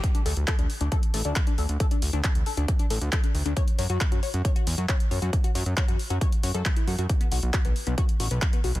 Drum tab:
HH |xxoxxxoxxxoxxxox|xxoxxxoxxxoxxxox|xxoxxxoxxxoxxxox|xxoxxxoxxxoxxxox|
CP |----x-------x---|----x-------x---|----x-------x---|----x-------x---|
BD |o---o---o---o---|o---o---o---o---|o---o---o---o---|o---o---o---o---|

HH |xxoxxxoxxxoxxxox|
CP |----x-------x---|
BD |o---o---o---o---|